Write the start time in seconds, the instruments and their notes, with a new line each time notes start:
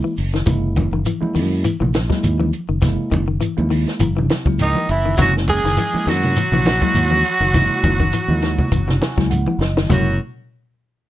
Already playing: tine electric piano G#3 A#3 E4
0.04 clean electric guitar E3
0.17 fingered electric bass F#1, open hi-hat, shekere
0.34 clean electric guitar D#3, snare, closed hi-hat
0.46 fingered electric bass F#1, clean electric guitar E3, tine electric piano G#3 A#3 E4, kick, closed hi-hat, low conga, shekere
0.76 clean electric guitar D#3, kick, closed hi-hat, high conga, shekere
0.92 fingered electric bass F#1, clean electric guitar D#3, high conga
1.06 clean electric guitar E3, closed hi-hat, shekere
1.21 tine electric piano G#3 A#3 E4, muted fingered electric bass stroke, high conga
1.35 fingered electric bass F#2, clean electric guitar D#3, open hi-hat, shekere
1.64 clean electric guitar E3, closed hi-hat, shekere
1.80 fingered electric bass A#1, clean electric guitar E3, low conga
1.94 snare, closed hi-hat, high conga, shekere
2.09 clean electric guitar F#3, tine electric piano G#3 A#3 E4, kick, snare
2.23 fingered electric bass D#2, closed hi-hat, high conga, shekere
2.40 clean electric guitar E3, high conga
2.53 closed hi-hat, shekere
2.69 fingered electric bass F#1, clean electric guitar D#3
2.82 clean electric guitar E3, tine electric piano G#3 A#3 E4, kick, snare, closed hi-hat, low conga, shekere
3.12 fingered electric bass F#1, clean electric guitar D#3, kick, closed hi-hat, high conga, shekere
3.28 clean electric guitar D#3
3.41 clean electric guitar E3, closed hi-hat, shekere
3.57 fingered electric bass D#2, tine electric piano G#3 A#3 E4, closed hi-hat, high conga
3.70 clean electric guitar D#3, open hi-hat, shekere
3.87 snare, closed hi-hat
3.99 fingered electric bass F#1, clean electric guitar E3, closed hi-hat, shekere
4.17 clean electric guitar E3, low conga
4.29 snare, closed hi-hat, high conga, shekere
4.45 fingered electric bass C#2, clean electric guitar F#3, tine electric piano G#3 A#3 E4, kick, closed hi-hat
4.59 baritone saxophone D#3, tenor saxophone D#4, closed hi-hat, high conga, shekere
4.75 clean electric guitar E3, high conga
4.89 fingered electric bass F#1, baritone saxophone E3, tenor saxophone E4, closed hi-hat, shekere
5.05 clean electric guitar D#3, closed hi-hat
5.17 fingered electric bass F#1, clean electric guitar E3, baritone saxophone F#3, tine electric piano G#3 A#3 C#4, tenor saxophone F#4, kick, snare, closed hi-hat, low conga, shekere
5.22 tenor saxophone F#4
5.37 snare
5.47 baritone saxophone G#3, tenor saxophone G#4, kick, closed hi-hat, high conga, shekere
5.64 fingered electric bass F#1, clean electric guitar D#3, snare
5.77 clean electric guitar E3, closed hi-hat, high conga, shekere
5.93 tine electric piano G#3 A#3 E4, muted fingered electric bass stroke, high conga
6.07 fingered electric bass F#2, clean electric guitar D#3, baritone saxophone F#3, tenor saxophone F#4, snare, open hi-hat, shekere
6.24 low conga
6.36 clean electric guitar E3, closed hi-hat, shekere
6.52 fingered electric bass A#1, clean electric guitar E3, low conga
6.64 snare, closed hi-hat, high conga, shekere
6.82 clean electric guitar F#3, tine electric piano G#3 A#3 E4, kick
6.95 fingered electric bass D#2, closed hi-hat, shekere
7.11 clean electric guitar E3, high conga
7.24 closed hi-hat, shekere
7.40 fingered electric bass F#1, clean electric guitar D#3
7.53 clean electric guitar E3, tine electric piano G#3 A#3 E4, kick, snare, closed hi-hat, low conga, shekere
7.83 fingered electric bass F#1, clean electric guitar D#3, kick, closed hi-hat, high conga, shekere
8.00 clean electric guitar D#3, kick, high conga
8.13 clean electric guitar E3, closed hi-hat, shekere
8.28 fingered electric bass D#2, tine electric piano G#3 A#3 E4, closed hi-hat, high conga
8.42 clean electric guitar D#3, snare, closed hi-hat, shekere
8.59 kick, closed hi-hat, low conga
8.72 fingered electric bass F#1, clean electric guitar E3, kick, closed hi-hat, shekere
8.88 muted clean electric guitar stroke, snare, low conga
9.01 tine electric piano G#5, snare, closed hi-hat, high conga, shekere
9.17 fingered electric bass C#2, clean electric guitar F#3, tine electric piano G#3 A#3 E4, kick, snare, closed hi-hat
9.30 tine electric piano F#5, closed hi-hat, high conga, shekere
9.46 clean electric guitar E3, high conga
9.59 fingered electric bass F#1, tine electric piano D#5, snare, shekere
9.77 clean electric guitar D#3, snare
9.90 fingered electric bass F#1, baritone saxophone F#2, clean electric guitar F#3, tenor saxophone F#3 F#4, tine electric piano G#3 A#3 E4, kick, floor tom, low conga, shekere